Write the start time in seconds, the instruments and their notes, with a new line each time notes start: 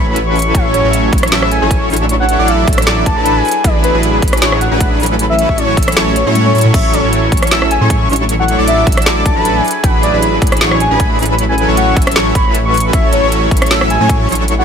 Already playing: soft synth lead B5
0.07 detuned saw bass A1, supersaw synth F#3 C#4 E4 A4 B4, digital synth lead B5
0.16 closed hi-hat
0.26 soft synth lead C#6
0.36 closed hi-hat, open hi-hat
0.42 closed hi-hat
0.54 detuned saw bass A1, supersaw synth F#3 C#4 E4 A4 C#5, soft synth lead E5, digital synth lead C#6, kick, closed hi-hat
0.74 soft synth lead C#5, closed hi-hat
0.84 detuned saw bass A1, supersaw synth F#3 C#4 E4 A4 C#5, digital synth lead C#6
0.93 closed hi-hat
1.12 detuned saw bass A1, supersaw synth F#3 C#4 C#5, digital synth lead C#6, kick, closed hi-hat
1.18 closed hi-hat
1.23 cross-stick, closed hi-hat
1.28 closed hi-hat
1.32 detuned saw bass A1, supersaw synth F#3 C#4 E4 A4 E5, digital synth lead E6, snare, closed hi-hat
1.43 cross-stick
1.51 soft synth lead G#5, closed hi-hat
1.62 detuned saw bass A1, supersaw synth F#3 C#4 E4 A4 C#5, digital synth lead C#6
1.71 kick, closed hi-hat
1.90 detuned saw bass A1, supersaw synth F#3 D4 E4 A4 C#5, digital synth lead C#6, closed hi-hat, open hi-hat
1.96 closed hi-hat
2.09 closed hi-hat
2.20 soft synth lead F#5
2.29 closed hi-hat
2.39 detuned saw bass A1, supersaw synth F#3 D4 E4 A4 D5, digital synth lead D6
2.48 soft synth lead E5, closed hi-hat
2.67 detuned saw bass A1, supersaw synth F#3 D4, digital synth lead E6, kick, closed hi-hat
2.73 closed hi-hat
2.78 cross-stick, closed hi-hat
2.82 closed hi-hat
2.87 detuned saw bass A1, supersaw synth F#3 D4 E4 A4 D5, digital synth lead D6, snare, closed hi-hat
3.06 detuned saw bass A1, supersaw synth F#3 D4 E4 A4 D5, soft synth lead A5, digital synth lead D6, kick, closed hi-hat
3.17 detuned saw bass A1, supersaw synth F#3 D4 E4 A4 B4, digital synth lead B5
3.26 closed hi-hat
3.36 soft synth lead G#5
3.45 closed hi-hat, open hi-hat
3.51 closed hi-hat
3.64 detuned saw bass A1, supersaw synth F#3 D4 E4 G#4 B4, soft synth lead D5, digital synth lead B5, kick, closed hi-hat
3.84 soft synth lead B4, closed hi-hat
3.94 detuned saw bass A1, supersaw synth F#3 D4 E4 G#4 B4, digital synth lead B5
4.03 closed hi-hat
4.22 detuned saw bass A1, supersaw synth F#3 D4 E4 G#4 B4, digital synth lead B5, kick, closed hi-hat
4.28 closed hi-hat
4.33 cross-stick, closed hi-hat
4.37 closed hi-hat
4.42 detuned saw bass A1, supersaw synth F#3 D4 E4 G#4 C#5, digital synth lead C#6, snare, closed hi-hat
4.52 cross-stick
4.61 soft synth lead F#5, closed hi-hat
4.71 detuned saw bass A1, supersaw synth F#3 D4 E4 G#4 B4, digital synth lead B5
4.80 kick, closed hi-hat
5.00 detuned saw bass A1, supersaw synth F#3 C#4 E4 A4 B4, digital synth lead B5, closed hi-hat, open hi-hat
5.06 closed hi-hat
5.19 closed hi-hat
5.30 soft synth lead E5
5.39 closed hi-hat
5.49 detuned saw bass A1, supersaw synth C#4 E4 A4 C#5, digital synth lead C#6, kick
5.58 soft synth lead C#5, closed hi-hat
5.77 detuned saw bass A1, supersaw synth F#3 C#4 E4 A4 E5, digital synth lead E6, kick, closed hi-hat
5.83 closed hi-hat
5.88 cross-stick, closed hi-hat
5.92 closed hi-hat
5.96 detuned saw bass A1, supersaw synth F#3 C#4 E4 A4 C#5, digital synth lead C#6, snare, closed hi-hat
6.16 soft synth lead C#5, closed hi-hat
6.26 detuned saw bass A2, supersaw synth F#3 C#4 E4 A4 C#5, digital synth lead C#6
6.35 closed hi-hat, high tom
6.46 soft synth lead C#5, high tom
6.55 detuned saw bass A2, supersaw synth F#3 C#4 E4 A4 C#5, digital synth lead C#6, closed hi-hat, open hi-hat
6.61 closed hi-hat, mid tom
6.74 detuned saw bass A1, supersaw synth F#3, soft synth lead E5, digital synth lead C#6, kick, closed hi-hat, crash
6.93 soft synth lead C#5, closed hi-hat
7.04 detuned saw bass A1, supersaw synth F#3 C#4 E4 A4 C#5, digital synth lead C#6
7.13 closed hi-hat
7.32 detuned saw bass A1, supersaw synth F#3 E4 A4 C#5, digital synth lead C#6, kick, closed hi-hat
7.37 closed hi-hat
7.43 cross-stick, closed hi-hat
7.47 supersaw synth F#3 C#4 A4, closed hi-hat
7.51 detuned saw bass A1, supersaw synth E4 E5, digital synth lead E6, snare, closed hi-hat
7.62 cross-stick
7.71 soft synth lead G#5, closed hi-hat
7.81 detuned saw bass A2, supersaw synth F#3 C#4 E4 A4 C#5, digital synth lead C#6
7.90 kick, closed hi-hat
8.09 detuned saw bass A1, supersaw synth F#3 D4 E4 A4 C#5, digital synth lead C#6, closed hi-hat, open hi-hat
8.16 closed hi-hat
8.29 closed hi-hat
8.39 soft synth lead F#5
8.48 closed hi-hat
8.58 detuned saw bass A1, supersaw synth F#3 D4 E4 A4 D5, digital synth lead D6
8.68 soft synth lead E5, closed hi-hat
8.87 detuned saw bass A1, supersaw synth F#3 D4 E4 A4 E5, digital synth lead E6, kick, closed hi-hat
8.92 closed hi-hat
8.97 cross-stick, closed hi-hat
9.02 closed hi-hat
9.06 detuned saw bass A1, supersaw synth F#3 D4 E4 A4 D5, digital synth lead D6, snare, closed hi-hat
9.25 detuned saw bass A1, supersaw synth D4, soft synth lead A5, digital synth lead D6, kick, closed hi-hat
9.36 detuned saw bass A1, supersaw synth F#3 D4 E4 A4 B4, digital synth lead B5
9.45 closed hi-hat
9.55 soft synth lead G#5
9.64 closed hi-hat, open hi-hat
9.71 closed hi-hat
9.84 detuned saw bass A1, supersaw synth F#3 D4 E4 G#4 B4, soft synth lead F#5, digital synth lead B5, kick, closed hi-hat
10.03 soft synth lead D5, closed hi-hat
10.13 detuned saw bass A1, supersaw synth F#3 D4 E4 G#4 B4, digital synth lead B5
10.22 closed hi-hat
10.42 detuned saw bass A1, supersaw synth F#3 D4 E4 G#4 B4, digital synth lead B5, kick, closed hi-hat
10.47 closed hi-hat
10.52 cross-stick, closed hi-hat
10.57 closed hi-hat
10.61 detuned saw bass A1, supersaw synth F#3 D4 E4 G#4 C#5, digital synth lead C#6, snare, closed hi-hat
10.71 cross-stick
10.80 soft synth lead G#5, closed hi-hat
10.91 detuned saw bass A1, supersaw synth F#3 D4 E4 G#4 B4, digital synth lead B5
11.00 kick, closed hi-hat
11.19 detuned saw bass A1, supersaw synth F#3 C#4 E4 A4 B4, digital synth lead B5, closed hi-hat, open hi-hat
11.26 closed hi-hat
11.39 closed hi-hat
11.49 soft synth lead G#5
11.58 closed hi-hat
11.68 detuned saw bass A1, supersaw synth F#3 C#4 E4 A4 C#5, digital synth lead C#6
11.77 soft synth lead F#5, closed hi-hat
11.96 detuned saw bass A1, supersaw synth C#4 E4 A4, digital synth lead E6, kick, closed hi-hat
12.02 closed hi-hat
12.07 cross-stick, closed hi-hat
12.12 closed hi-hat
12.16 detuned saw bass A1, supersaw synth F#3 C#4 E4 A4 C#5, digital synth lead C#6, snare, closed hi-hat
12.35 detuned saw bass A1, supersaw synth F#3 C#4 E4 A4 C#5, soft synth lead B5, digital synth lead C#6, kick, closed hi-hat
12.45 detuned saw bass A1, supersaw synth F#3 C#4 E4 A4 B4, digital synth lead B5
12.55 closed hi-hat
12.65 soft synth lead C#6
12.74 closed hi-hat, open hi-hat
12.80 closed hi-hat
12.93 detuned saw bass A1, supersaw synth F#3 C#4 E4 A4 C#5, soft synth lead E5, digital synth lead C#6, kick, closed hi-hat
13.13 soft synth lead C#5, closed hi-hat
13.23 detuned saw bass A1, supersaw synth F#3 C#4 E4 A4 C#5, digital synth lead C#6
13.32 closed hi-hat
13.51 detuned saw bass A1, supersaw synth F#3 C#4 E4 A4 C#5, digital synth lead C#6, kick, closed hi-hat
13.57 closed hi-hat
13.62 cross-stick, closed hi-hat
13.66 closed hi-hat
13.70 detuned saw bass A1, supersaw synth F#3 C#4 E4 A4 E5, digital synth lead E6, snare, closed hi-hat
13.81 cross-stick
13.90 soft synth lead G#5, closed hi-hat
14.00 detuned saw bass A2, supersaw synth F#3 C#4 E4 A4 C#5, digital synth lead C#6
14.09 kick, closed hi-hat
14.29 detuned saw bass A1, supersaw synth F#3 D4 E4 A4 C#5, digital synth lead C#6, closed hi-hat, open hi-hat
14.35 closed hi-hat
14.48 closed hi-hat
14.59 soft synth lead F#5